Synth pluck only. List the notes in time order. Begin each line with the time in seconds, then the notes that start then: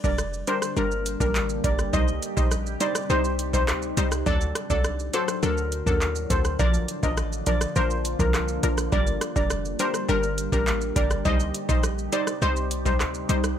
0.04 G3 D4 A#4
0.47 G3 D4 A#4
0.77 G3 D4 A#4
1.20 G3 D4 A#4
1.64 G3 D4 A#4
1.93 G3 D#4 C5
2.37 G3 D#4 C5
2.80 G3 D#4 C5
3.10 G3 D#4 C5
3.53 G3 D#4 C5
3.97 G3 D#4 C5
4.26 F#3 D4 A4
4.70 F#3 D4 A4
5.14 F#3 D4 A4
5.43 F#3 D4 A4
5.86 F#3 D4 A4
6.30 F#3 D4 A4
6.59 F3 D4 A#4
7.03 F3 D4 A#4
7.46 F3 D4 A#4
7.76 F3 D4 A#4
8.19 F3 D4 A#4
8.63 F3 D4 A#4
8.92 G3 D4 A#4
9.36 G3 D4 A#4
9.80 G3 D4 A#4
10.09 G3 D4 A#4
10.52 G3 D4 A#4
10.96 G3 D4 A#4
11.25 G3 D#4 C5
11.69 G3 D#4 C5
12.12 G3 D#4 C5
12.42 G3 D#4 C5
12.85 G3 D#4 C5
13.29 G3 D#4 C5